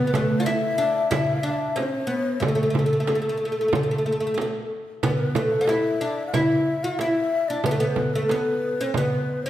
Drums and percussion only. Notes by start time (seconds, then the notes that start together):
0.13 darbuka dum, frame drum
0.46 darbuka tek, frame drum
0.62 darbuka ka
0.80 darbuka ka
1.11 darbuka dum, frame drum
1.61 darbuka ka
1.76 darbuka tek, frame drum
2.41 darbuka dum, frame drum
2.59 darbuka ka
2.74 darbuka dum, frame drum
3.07 darbuka tek, frame drum
3.24 darbuka ka
3.41 darbuka ka
3.73 darbuka dum, frame drum
4.22 darbuka ka
4.38 darbuka tek, frame drum
5.03 frame drum, darbuka dum
5.20 darbuka ka
5.35 frame drum
5.67 darbuka tek, frame drum
5.85 darbuka ka
6.02 darbuka ka
6.34 frame drum, darbuka dum
6.83 darbuka ka
6.99 darbuka tek, frame drum
7.64 frame drum, darbuka dum
7.81 darbuka ka
7.96 frame drum, darbuka dum
8.14 darbuka ka
8.29 darbuka tek, frame drum
8.47 darbuka ka
8.94 frame drum, darbuka dum
9.28 darbuka ka
9.45 darbuka ka